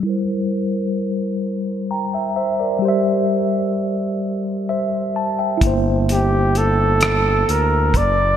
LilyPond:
<<
  \new Staff \with { instrumentName = "Tine electric piano" } { \time 6/8 \key c \mixolydian \tempo 4. = 43 << { r2 <g'' bes''>16 <e'' g''>16 <c'' e''>16 <bes' d''>16~ | <bes' d''>16 r4. r16 <c'' e''>8 a''16 <e'' g''>16~ | <e'' g''>16 r2 r8. | } \\ { <g e' bes' c''>2. | <g g' c'' e''>2. | <bes e' c''>2. | } >> }
  \new Staff \with { instrumentName = "Flugelhorn" } { \time 6/8 \key c \mixolydian r2. | r2. | r8 g'8 a'4 bes'8 d''8 | }
  \new Staff \with { instrumentName = "Analog synth bass" } { \clef bass \time 6/8 \key c \mixolydian r2. | r2. | g,,2 d,8 fis,,8 | }
  \new DrumStaff \with { instrumentName = "Drums" } \drummode { \time 6/8 r4. r4. | r4. r4. | <hh bd>8 hh8 hh8 <hh ss>8 hh8 <hh bd>8 | }
>>